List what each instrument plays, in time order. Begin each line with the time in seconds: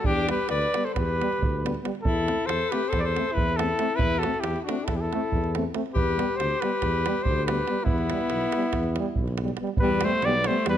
0.04 tuba E2, alto saxophone D4, trumpet G4, davul low
0.29 trombone G3, euphonium B3, alto saxophone G4, trumpet B4, davul high
0.40 davul high
0.49 tuba D2, alto saxophone B4, trumpet D5, davul high
0.62 davul high
0.74 trombone G3, euphonium B3, davul high
0.84 alto saxophone A4, trumpet C5, davul high
0.94 tuba E2, alto saxophone G4, trumpet B4, davul high, davul low
1.09 davul high
1.20 trombone G3, euphonium B3, davul high
1.32 davul high
1.39 tuba D2, davul low
1.64 trombone G3, euphonium B3, davul high
1.74 davul high
1.83 trombone G3, euphonium B3, davul high
1.95 davul high
2.02 tuba E2, alto saxophone E4, trumpet A4, davul low
2.27 trombone A3, euphonium C4, davul high
2.41 davul high
2.46 tuba E2, alto saxophone A4, trumpet C5, davul high
2.62 davul high
2.69 euphonium C4, alto saxophone G4, trumpet B4, davul high
2.74 trombone A3
2.88 alto saxophone A4, trumpet C5
2.93 tuba E2, davul high, davul low
2.99 alto saxophone A4 B4, trumpet C5 D5
3.16 trombone A3, euphonium C4, davul high
3.32 alto saxophone E4, trumpet B4
3.37 tuba E2, davul low
3.49 davul high
3.55 trombone A3, alto saxophone E4, trumpet A4
3.59 euphonium C4, davul high
3.79 trombone A3, euphonium C4, davul high
3.90 davul high
3.94 alto saxophone E4, trumpet B4
3.99 tuba E2, davul low
4.18 alto saxophone F#4, trumpet A4
4.23 trombone A3, euphonium C4, davul high
4.34 davul high
4.40 tuba E2, alto saxophone E4, trumpet G4, davul high
4.56 davul high
4.63 alto saxophone D4, trumpet F#4
4.68 trombone A3, euphonium C4, davul high
4.84 tuba E2, alto saxophone E4, trumpet A4
4.88 davul high, davul low
4.96 alto saxophone E4, trumpet G4
5.00 alto saxophone E4, trumpet A4
5.13 trombone A3, euphonium C4, davul high
5.32 tuba E2, davul low
5.44 davul high
5.55 trombone A3, euphonium C4, davul high
5.74 trombone A3, euphonium C4, davul high
5.86 davul high
5.94 tuba E2, alto saxophone G4, trumpet B4, davul low
6.17 trombone G3, euphonium B3, davul high
6.28 davul high
6.36 tuba D2, alto saxophone G4, trumpet C5
6.40 davul high
6.51 davul high
6.60 trombone G3, euphonium B3, alto saxophone G4, trumpet B4, davul high
6.82 tuba E2, davul high, davul low
7.06 trombone G3, euphonium B3, davul high
7.22 alto saxophone G4, trumpet C5, davul low
7.27 tuba D2
7.45 alto saxophone G4, trumpet B4, davul high
7.49 trombone G3, euphonium B3
7.67 trombone G3, euphonium B3, davul high
7.84 tuba E2, alto saxophone B3, trumpet E4, davul low
7.98 davul high
8.10 trombone G3, euphonium B3, davul high
8.21 davul high
8.30 tuba B1, davul high
8.41 davul high
8.52 trombone G3, euphonium B3, davul high
8.62 davul high
8.73 tuba E2, davul high, davul low
8.83 davul high
8.96 trombone G3, euphonium B3, davul high
9.16 tuba B1, davul low
9.28 davul high
9.38 davul high
9.42 trombone G3, euphonium B3
9.48 davul high
9.57 euphonium B3, davul high
9.62 trombone G3
9.67 davul high
9.77 tuba E2, alto saxophone G3, euphonium B3, trumpet B4, davul low
9.82 trombone G3
10.01 trombone G3, alto saxophone A3, euphonium B3, trumpet C5, davul high
10.11 davul high
10.22 tuba B1, trombone G3, alto saxophone B3, euphonium B3, trumpet D5, davul high
10.44 trombone G3, alto saxophone A3, trumpet C5, davul high
10.49 euphonium B3
10.66 tuba E2, trombone G3, alto saxophone G3, euphonium B3, trumpet B4, davul high